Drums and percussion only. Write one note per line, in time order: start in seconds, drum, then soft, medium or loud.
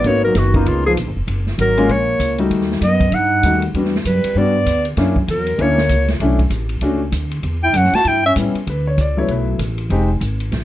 0.04 kick soft
0.04 ride medium
0.35 kick soft
0.35 snare soft
0.35 hi-hat pedal medium
0.35 ride medium
0.54 kick medium
0.54 ride soft
0.66 kick soft
0.66 ride medium
0.97 kick soft
0.97 hi-hat pedal medium
0.97 ride medium
1.28 kick soft
1.28 ride medium
1.47 snare soft
1.58 kick soft
1.58 hi-hat pedal soft
1.58 ride medium
1.78 ride soft
1.89 kick soft
1.89 ride soft
2.20 kick soft
2.20 hi-hat pedal medium
2.20 ride medium
2.38 ride soft
2.51 kick soft
2.51 ride medium
2.61 snare soft
2.72 snare soft
2.81 kick soft
2.81 hi-hat pedal soft
2.81 ride medium
3.00 kick medium
3.00 ride soft
3.12 kick soft
3.12 ride medium
3.43 kick soft
3.43 hi-hat pedal medium
3.43 ride medium
3.62 ride soft
3.74 kick soft
3.74 ride medium
3.85 snare soft
3.95 snare soft
4.05 kick soft
4.05 hi-hat pedal medium
4.05 ride medium
4.24 ride medium
4.36 kick soft
4.66 kick soft
4.66 hi-hat pedal medium
4.66 ride medium
4.85 ride soft
4.97 kick soft
4.97 snare soft
4.97 ride medium
5.16 kick medium
5.28 kick soft
5.28 hi-hat pedal soft
5.28 ride medium
5.47 ride soft
5.59 kick soft
5.59 ride medium
5.78 snare soft
5.89 kick soft
5.89 hi-hat pedal medium
5.89 ride medium
6.08 snare medium
6.08 ride soft
6.20 kick soft
6.20 ride medium
6.39 kick soft
6.39 ride soft
6.50 kick soft
6.50 hi-hat pedal medium
6.50 ride medium
6.69 ride soft
6.81 kick soft
6.81 ride soft
7.12 kick soft
7.12 hi-hat pedal medium
7.12 ride medium
7.31 ride soft
7.43 kick soft
7.43 ride medium
7.74 kick soft
7.74 hi-hat pedal soft
7.74 ride medium
7.85 snare soft
7.93 snare soft
7.93 ride soft
8.05 kick soft
8.05 ride medium
8.36 kick soft
8.36 hi-hat pedal medium
8.36 ride medium
8.55 ride soft
8.67 kick soft
8.67 ride medium
8.98 kick soft
8.98 hi-hat pedal soft
8.98 ride medium
9.28 kick soft
9.28 ride soft
9.59 kick soft
9.59 hi-hat pedal medium
9.59 ride medium
9.78 ride soft
9.90 kick soft
9.90 ride soft
10.21 kick soft
10.21 hi-hat pedal medium
10.21 ride soft
10.40 ride soft
10.52 kick soft
10.52 snare soft
10.52 ride soft